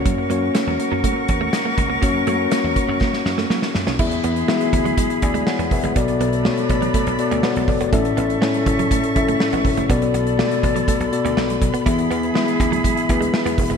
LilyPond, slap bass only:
\new Staff \with { instrumentName = "Slap bass" } { \clef bass \time 4/4 \key b \dorian \tempo 4 = 122 fis,8 fis,8 r16 e,16 r16 fis,16 r8 e,8 r8 cis,8 | fis,8 fis,8 r16 e,16 r16 fis,16 r8 fis,8 fis16 r16 fis,16 b,,16 | e,8 e,8 r8 d,8 r8 d,8 r16 e,16 e,,16 fis,,16 | b,,8 b,,8. r16 a,,8 r16 b,,16 r16 d,16 r16 b,,16 fis,,16 e,,16 |
a,,8 a,,8 r8 fis,,8 r8 fis,,8 r16 a,,16 e,,16 fis,,16 | b,,8 b,,8. r16 a,,8 r16 b,,16 r16 d,16 b,,8 b,,16 r16 | e,8 e,8 r8 d,8 r8 d,8 r16 e,16 e,,16 fis,,16 | }